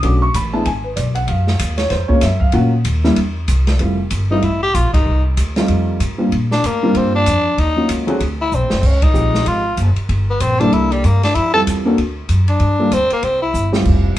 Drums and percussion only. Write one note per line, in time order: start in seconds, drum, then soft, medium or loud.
0.03 kick soft
0.03 ride medium
0.34 kick soft
0.34 hi-hat pedal medium
0.34 ride medium
0.65 kick soft
0.65 ride medium
0.97 kick soft
0.97 hi-hat pedal medium
0.97 ride medium
1.15 ride medium
1.28 kick soft
1.28 ride medium
1.47 snare medium
1.59 kick soft
1.59 hi-hat pedal medium
1.59 ride medium
1.78 snare soft
1.78 ride soft
1.90 kick soft
1.90 snare soft
1.90 ride medium
2.10 kick medium
2.21 snare soft
2.21 hi-hat pedal soft
2.21 ride medium
2.41 kick medium
2.52 ride medium
2.85 kick soft
2.85 hi-hat pedal medium
2.85 ride medium
3.04 snare soft
3.16 kick soft
3.16 ride medium
3.48 kick soft
3.48 hi-hat pedal medium
3.48 ride medium
3.67 snare medium
3.67 ride soft
3.79 kick soft
3.79 ride medium
4.10 kick soft
4.10 hi-hat pedal medium
4.10 ride medium
4.42 kick soft
4.42 ride medium
4.75 kick soft
4.75 hi-hat pedal medium
4.75 ride medium
4.94 kick medium
4.94 ride medium
5.37 kick soft
5.37 hi-hat pedal medium
5.37 ride medium
5.56 snare medium
5.56 ride soft
5.68 kick soft
5.68 ride medium
6.00 kick soft
6.00 hi-hat pedal medium
6.00 ride medium
6.32 kick soft
6.32 ride medium
6.51 snare soft
6.64 kick soft
6.64 hi-hat pedal medium
6.64 ride medium
6.95 kick soft
6.95 ride medium
7.26 kick soft
7.26 hi-hat pedal medium
7.26 ride medium
7.58 kick soft
7.58 ride medium
7.89 kick soft
7.89 hi-hat pedal medium
7.89 ride medium
8.08 ride soft
8.20 kick soft
8.20 ride medium
8.52 hi-hat pedal medium
8.70 snare medium
8.83 kick medium
8.83 crash medium
9.02 kick medium
9.02 ride medium
9.15 hi-hat pedal medium
9.34 snare medium
9.46 kick soft
9.46 ride medium
9.77 kick soft
9.77 hi-hat pedal medium
9.77 ride medium
9.96 ride soft
10.09 kick soft
10.09 ride medium
10.40 kick soft
10.40 hi-hat pedal medium
10.40 ride medium
10.60 ride soft
10.72 kick soft
10.72 ride medium
10.92 ride medium
11.04 kick soft
11.04 hi-hat pedal medium
11.04 ride medium
11.23 snare soft
11.23 ride medium
11.35 kick soft
11.35 ride medium
11.67 kick soft
11.67 hi-hat pedal medium
11.67 ride medium
11.98 kick soft
11.98 ride medium
12.29 kick soft
12.29 hi-hat pedal medium
12.29 ride medium
12.48 ride soft
12.60 kick soft
12.60 ride medium
12.92 kick soft
12.92 hi-hat pedal medium
12.92 ride medium
13.10 ride soft
13.23 kick soft
13.23 ride medium
13.54 hi-hat pedal medium
13.73 snare medium
13.85 kick medium
13.85 crash medium